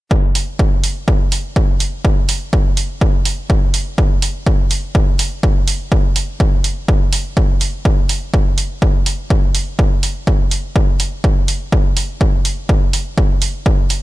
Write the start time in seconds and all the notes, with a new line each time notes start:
0.11 kick
0.35 open hi-hat
0.59 kick
0.84 open hi-hat
1.08 kick
1.32 open hi-hat
1.56 kick
1.80 open hi-hat
2.05 kick
2.29 open hi-hat
2.53 kick
2.77 open hi-hat
3.01 kick
3.25 open hi-hat
3.50 kick
3.74 open hi-hat
3.98 kick
4.22 open hi-hat
4.47 kick
4.71 open hi-hat
4.95 kick
5.19 open hi-hat
5.43 kick
5.68 open hi-hat
5.92 kick
6.16 open hi-hat
6.40 kick
6.64 open hi-hat
6.88 kick
7.13 open hi-hat
7.37 kick
7.61 open hi-hat
7.85 kick
8.09 open hi-hat
8.34 kick
8.58 open hi-hat
8.82 kick
9.06 open hi-hat
9.30 kick
9.55 open hi-hat
9.79 kick
10.03 open hi-hat
10.27 kick
10.51 open hi-hat
10.76 kick
11.00 open hi-hat
11.24 kick
11.48 open hi-hat
11.72 kick
11.97 open hi-hat
12.21 kick
12.45 open hi-hat
12.69 kick
12.93 open hi-hat
13.18 kick
13.42 open hi-hat
13.66 kick
13.90 open hi-hat